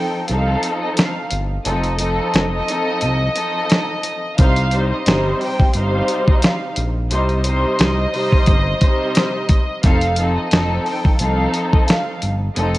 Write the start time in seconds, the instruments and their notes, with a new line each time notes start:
Already playing: string section F3 C4 D#4 A4, violin section G5
0.28 analog synth bass C2, string section F3 C4 D#4 A4, violin section F5, closed hi-hat
0.63 closed hi-hat
0.82 violin section D#5
0.97 violin section F5, snare, closed hi-hat
1.31 analog synth bass G1, closed hi-hat
1.65 analog synth bass F1, string section F3 C4 D#4 A4, violin section D#5, closed hi-hat
1.84 closed hi-hat
1.98 string section F3 C4 D#4 A4, closed hi-hat
2.33 analog synth bass F1, snare, closed hi-hat
2.68 string section F3 C4 D#4 A4, closed hi-hat
3.01 analog synth bass C2, closed hi-hat
3.36 string section F3 C4 D#4 A4, closed hi-hat
3.70 snare, closed hi-hat
4.03 closed hi-hat
4.38 analog synth bass C2, string section C3 G3 D#4 C5, violin section F5, kick, closed hi-hat
4.56 closed hi-hat
4.71 string section C3 G3 D#4 C5, closed hi-hat
4.90 violin section D#5
5.06 analog synth bass G1, string section C3 G3 D#4 C5, snare, closed hi-hat
5.41 violin section G5, open hi-hat
5.60 kick
5.74 analog synth bass G1, string section C3 G3 D#4 C5, violin section F5, closed hi-hat
6.08 closed hi-hat
6.28 violin section D#5, kick
6.42 violin section F5, snare, closed hi-hat
6.76 analog synth bass A#1, closed hi-hat
7.11 analog synth bass C2, string section C3 G3 D#4 C5, violin section D#5, closed hi-hat
7.29 closed hi-hat
7.44 string section C3 G3 D#4 C5, closed hi-hat
7.79 analog synth bass C2, snare, closed hi-hat
8.13 string section C3 G3 D#4 C5, open hi-hat
8.32 kick
8.46 analog synth bass G1, kick, closed hi-hat
8.81 string section C3 G3 D#4 C5, kick, closed hi-hat
9.15 snare, closed hi-hat
9.49 kick, closed hi-hat
9.83 analog synth bass F1, string section F3 C4 D#4 A4, violin section F5, kick, closed hi-hat
10.02 closed hi-hat
10.17 string section F3 C4 D#4 A4, closed hi-hat
10.36 violin section D#5
10.51 analog synth bass F1, string section F3 C4 D#4 A4, snare, closed hi-hat
10.86 violin section G5, open hi-hat
11.05 kick
11.19 analog synth bass C2, string section F3 C4 D#4 A4, violin section F5, closed hi-hat
11.54 closed hi-hat
11.73 violin section D#5, kick
11.88 violin section F5, snare, closed hi-hat
12.22 analog synth bass G1, closed hi-hat
12.56 analog synth bass F1, string section F3 C4 D#4 A4, violin section D#5, closed hi-hat
12.74 closed hi-hat